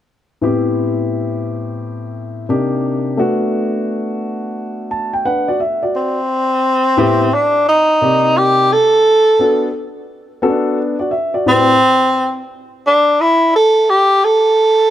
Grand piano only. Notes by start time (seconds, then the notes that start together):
0.41 A2 B3 C4 E4 G4
2.49 C3 A#3 D4 D#4 G4
3.17 A3 B3 D4 F#4
4.91 A5
5.13 G5
5.25 D4 B4 F#5
5.48 F#4 D5
5.60 E5
5.83 F#4 D5
6.97 A2 B3 C4 E4 G4
8.01 C3 A#3 D#4 G4 D5
9.39 B3 D4 F#4 A4
10.42 B3 C#4 F#4 A4
10.49 D4
10.99 F#4 D5
11.11 E5
11.34 F#4 D5
11.46 A2 C4 E4 G4 B4